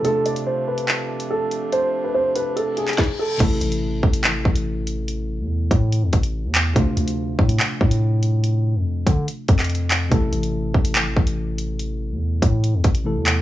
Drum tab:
CC |--------------------------------|--------------------------------|x-------------------------------|--------------------------------|
HH |x---x-x-------x-------x-----x---|x-----------x---x---x-xxxx------|x---x-x-------x-------x-----x---|x-----------x---x---x-x-----x---|
CP |----------------x---------------|----------------------x---------|----------------x---------------|----------------------------x---|
SD |--------------------------------|------------------------o-------|--------------------------------|--------------------------------|
BD |--------------------------------|------------------------o-------|o-----------o-------o-----------|------------o-------o-----------|

CC |--------------------------------|--------------------------------|--------------------------------|--------------------------------|
HH |x---x-x-------x-------x-----x---|x-----------x---x---x-xxxx--x---|x---x-x-------x-------x-----x---|x-----------x---x---x-x-----x---|
CP |----------------x---------------|----------------------x-----x---|----------------x---------------|----------------------------x---|
SD |--------------------------------|--------------------------------|--------------------------------|--------------------------------|
BD |o-----------o-------o-----------|------------o-------o-----------|o-----------o-------o-----------|------------o-------o-----------|